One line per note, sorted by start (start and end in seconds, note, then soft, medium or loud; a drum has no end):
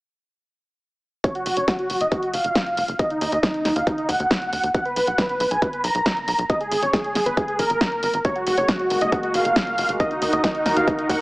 1.24 1.33 C#5 medium
1.24 kick loud
1.24 closed hi-hat medium
1.35 1.44 F#4 medium
1.35 closed hi-hat soft
1.46 1.53 F#1 medium
1.46 1.55 F#4 medium
1.46 open hi-hat loud
1.57 1.64 F#1 medium
1.57 1.66 C#5 medium
1.57 closed hi-hat medium
1.68 1.77 F#4 medium
1.68 kick loud
1.68 snare loud
1.68 closed hi-hat soft
1.79 1.88 F#4 medium
1.79 closed hi-hat soft
1.90 1.97 F#1 medium
1.90 1.99 F#4 medium
1.90 open hi-hat medium
2.01 2.08 F#1 medium
2.01 2.10 D#5 medium
2.01 closed hi-hat medium
2.12 2.21 F#4 medium
2.12 kick loud
2.12 closed hi-hat medium
2.23 2.32 F#4 medium
2.23 closed hi-hat soft
2.34 2.40 F#1 medium
2.34 2.91 F5 loud
2.34 open hi-hat loud
2.44 2.51 F#1 medium
2.44 closed hi-hat soft
2.55 kick loud
2.55 snare loud
2.55 closed hi-hat medium
2.66 closed hi-hat soft
2.77 2.84 F#1 medium
2.77 open hi-hat medium
2.88 2.95 F#1 medium
2.88 closed hi-hat medium
2.99 3.08 D#5 medium
2.99 kick loud
2.99 closed hi-hat medium
3.10 3.19 D#4 medium
3.10 closed hi-hat soft
3.21 3.28 D#2 medium
3.21 3.30 D#4 medium
3.21 open hi-hat loud
3.32 3.39 D#2 medium
3.32 3.41 D#5 medium
3.32 closed hi-hat soft
3.43 3.52 D#4 medium
3.43 kick loud
3.43 snare loud
3.43 closed hi-hat soft
3.54 3.63 D#4 medium
3.54 closed hi-hat soft
3.65 3.72 D#2 medium
3.65 3.74 D#4 medium
3.65 snare medium
3.65 open hi-hat medium
3.76 3.83 D#2 medium
3.76 3.85 F5 medium
3.76 closed hi-hat medium
3.87 3.96 D#4 medium
3.87 kick loud
3.87 closed hi-hat medium
3.98 4.07 D#4 medium
3.98 closed hi-hat soft
4.09 4.16 D#2 medium
4.09 4.66 F#5 medium
4.09 kick medium
4.09 open hi-hat loud
4.20 4.26 D#2 medium
4.20 closed hi-hat soft
4.31 kick loud
4.31 snare loud
4.31 closed hi-hat soft
4.42 closed hi-hat soft
4.53 4.59 D#2 medium
4.53 open hi-hat medium
4.63 4.70 D#2 medium
4.63 closed hi-hat soft
4.74 4.83 F#5 loud
4.74 kick loud
4.74 closed hi-hat soft
4.85 4.94 B4 medium
4.85 closed hi-hat soft
4.96 5.03 B1 medium
4.96 5.05 B4 medium
4.96 open hi-hat loud
5.07 5.14 B1 medium
5.07 5.16 F#5 medium
5.07 closed hi-hat soft
5.18 5.27 B4 medium
5.18 kick loud
5.18 snare loud
5.18 closed hi-hat soft
5.29 5.38 B4 medium
5.29 closed hi-hat soft
5.40 5.47 B1 medium
5.40 5.49 B4 medium
5.40 open hi-hat medium
5.51 5.58 B1 medium
5.51 5.60 G#5 medium
5.51 closed hi-hat soft
5.62 5.71 B4 medium
5.62 kick loud
5.62 closed hi-hat soft
5.73 5.82 B4 medium
5.73 closed hi-hat soft
5.84 5.91 B1 medium
5.84 6.41 A#5 medium
5.84 open hi-hat loud
5.95 6.02 B1 medium
5.95 closed hi-hat soft
6.06 kick loud
6.06 snare loud
6.06 closed hi-hat soft
6.17 closed hi-hat soft
6.28 6.35 B1 medium
6.28 open hi-hat medium
6.39 6.45 B1 medium
6.39 closed hi-hat soft
6.49 6.58 D#5 loud
6.49 kick loud
6.49 closed hi-hat soft
6.60 6.69 G#4 medium
6.60 closed hi-hat soft
6.71 6.78 G#1 medium
6.71 6.80 G#4 medium
6.71 open hi-hat loud
6.82 6.89 G#1 medium
6.82 6.91 C#5 medium
6.82 closed hi-hat soft
6.93 7.02 G#4 medium
6.93 kick loud
6.93 snare loud
6.93 closed hi-hat soft
7.04 7.13 G#4 medium
7.04 closed hi-hat soft
7.15 7.22 G#1 loud
7.15 7.24 G#4 medium
7.15 snare medium
7.15 open hi-hat medium
7.26 7.33 G#1 medium
7.26 7.35 B4 medium
7.26 closed hi-hat soft
7.37 7.46 G#4 medium
7.37 kick loud
7.37 closed hi-hat soft
7.48 7.57 G#4 medium
7.48 closed hi-hat soft
7.59 7.66 G#1 medium
7.59 8.16 A#4 loud
7.59 kick medium
7.59 open hi-hat loud
7.70 7.77 G#1 medium
7.70 closed hi-hat soft
7.81 kick loud
7.81 snare loud
7.81 closed hi-hat soft
7.92 closed hi-hat soft
8.03 8.10 G#1 medium
8.03 open hi-hat medium
8.14 8.21 G#1 medium
8.14 closed hi-hat soft
8.25 9.98 G#3 medium
8.25 9.98 A#3 medium
8.25 9.98 F#4 medium
8.25 8.34 C#5 loud
8.25 kick loud
8.25 closed hi-hat soft
8.36 8.44 F#4 medium
8.36 closed hi-hat soft
8.47 8.53 F#1 medium
8.47 8.55 F#4 medium
8.47 open hi-hat loud
8.58 8.64 F#1 medium
8.58 8.66 C#5 medium
8.58 closed hi-hat soft
8.68 8.77 F#4 medium
8.68 kick loud
8.68 snare loud
8.68 closed hi-hat soft
8.79 8.88 F#4 medium
8.79 closed hi-hat soft
8.90 8.97 F#1 medium
8.90 8.99 F#4 medium
8.90 open hi-hat medium
9.01 9.08 F#1 medium
9.01 9.10 D#5 medium
9.01 closed hi-hat soft
9.12 9.21 F#4 medium
9.12 kick loud
9.12 closed hi-hat soft
9.23 9.32 F#4 medium
9.23 closed hi-hat soft
9.34 9.41 F#1 medium
9.34 9.91 F5 loud
9.34 open hi-hat loud
9.45 9.52 F#1 medium
9.45 closed hi-hat soft
9.56 kick loud
9.56 snare loud
9.56 closed hi-hat soft
9.67 closed hi-hat soft
9.78 9.85 F#1 medium
9.78 open hi-hat medium
9.89 9.96 F#1 medium
9.89 closed hi-hat soft
10.00 11.21 D#3 medium
10.00 11.21 D#4 medium
10.00 11.21 F#4 medium
10.00 11.21 A#4 medium
10.00 10.09 D#5 loud
10.00 kick loud
10.00 closed hi-hat soft
10.11 10.20 D#4 medium
10.11 closed hi-hat soft
10.22 10.29 D#2 medium
10.22 10.31 D#4 medium
10.22 open hi-hat loud
10.33 10.40 D#2 medium
10.33 10.42 D#5 medium
10.33 closed hi-hat medium
10.44 10.53 D#4 medium
10.44 kick loud
10.44 snare loud
10.44 closed hi-hat soft
10.55 10.63 D#4 medium
10.55 closed hi-hat soft
10.66 10.72 D#2 medium
10.66 10.74 D#4 medium
10.66 snare medium
10.66 open hi-hat medium
10.76 10.83 D#2 medium
10.76 10.85 F5 loud
10.76 closed hi-hat medium
10.88 10.96 D#4 medium
10.88 kick loud
10.88 closed hi-hat medium
10.98 11.07 D#4 medium
10.98 closed hi-hat soft
11.09 11.16 D#2 medium
11.09 11.21 F#5 loud
11.09 kick medium
11.09 open hi-hat loud